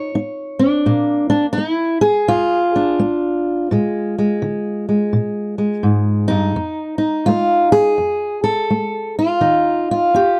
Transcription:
Already playing: D#4 C#5
0.15 D#4
0.59 D4
0.86 A#2 A#3
1.30 D4
1.53 D#4
1.58 A#3
1.71 E4
2.01 G#4
2.28 F2 F4
2.76 D4
2.99 A#3
3.71 A#2 G#3
4.18 G#3
4.42 D3
4.89 G#3
5.13 A#2
5.58 G#3
5.83 G#2
6.28 G2 D#4
6.56 F2
6.98 D#4
7.26 A3 F4
7.72 G#4
7.98 F2
8.44 A4
8.70 A3
9.19 F4
9.41 D#3 D#4
9.91 F4
10.14 D#4 G4

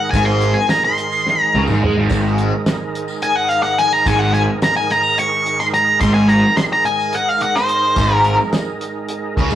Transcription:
Already playing: G#2 D#3 G#3 D#4 A#4 F#5
0.11 G#1 G#2 G#5, kick, closed hi-hat, tambourine
0.25 C6
0.41 closed hi-hat
0.54 G#5, tambourine
0.69 A#5, snare, closed hi-hat, tambourine
0.85 C6
0.98 closed hi-hat, tambourine
1.12 tambourine
1.27 snare
1.43 A#5
1.54 C#2 C#3, high tom, tambourine
1.67 G#1 G#2, mid tom, tambourine
1.82 G#2 G#3, mid tom
1.97 G#1 G#2
2.10 G#1 G#2 D#3, kick, closed hi-hat, tambourine
2.38 closed hi-hat
2.66 snare, closed hi-hat, tambourine
2.95 closed hi-hat
3.08 tambourine
3.22 G#5, closed hi-hat
3.36 F#5
3.49 F5, closed hi-hat
3.63 F#5, tambourine
3.79 G#5, snare, closed hi-hat
3.93 A#5
4.06 G#1 G#2 G#5, kick, closed hi-hat, tambourine
4.19 F#5
4.34 G#5, closed hi-hat
4.62 A#5, snare, closed hi-hat, tambourine
4.77 G#5
4.90 A#5, snare, closed hi-hat
5.03 tambourine
5.18 C#6, closed hi-hat
5.46 closed hi-hat
5.60 C6, tambourine
5.74 A#5, closed hi-hat
6.01 G#1 G#2 C6, kick, closed hi-hat, tambourine
6.14 G#5
6.28 A#5, closed hi-hat
6.57 C6, snare, closed hi-hat, tambourine
6.73 A#5
6.85 G#5, closed hi-hat
7.00 tambourine
7.13 F#5, closed hi-hat
7.29 F5
7.41 F#5, closed hi-hat
7.56 C5, tambourine
7.69 closed hi-hat
7.96 G#1 G#2, kick, closed hi-hat, tambourine
8.14 A#4
8.24 closed hi-hat
8.40 tambourine
8.53 snare, closed hi-hat, tambourine
8.81 closed hi-hat, tambourine
9.08 closed hi-hat
9.37 C#2 C#3, kick, snare, closed hi-hat, tambourine
9.50 G#1 G#2, tambourine

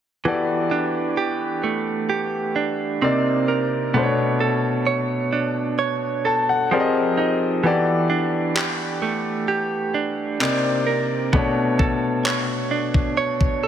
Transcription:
0.25 E3 B3 F#4 G4 A4 D5
0.71 D4
1.17 G4
1.64 A3
2.09 G4
2.56 D4
3.02 C3 A#3 C4 D#4 D5
3.48 A#4
3.94 B2 A3 B3 D4 C5
4.03 C#5
4.40 A4
4.87 C#5
5.33 D4
5.79 C#5
6.25 A4 A5
6.49 F#5
6.71 F3 C4 G4 G#4 A#4 D5
6.80 D#5
7.17 D#4 D#5
7.63 E3 B3 F#4 G4 A4 D5
8.10 D4
8.56 G4, clap
9.02 A3
9.48 G4
9.94 D4
10.40 C3 A#3 C4 D#4 D5, clap
10.87 A#4
11.33 B2 A3 B3 D4 C#5, kick
11.79 A4, kick
12.25 C#5, clap
12.71 D4
12.94 kick
13.17 C#5
13.41 kick
13.63 A4

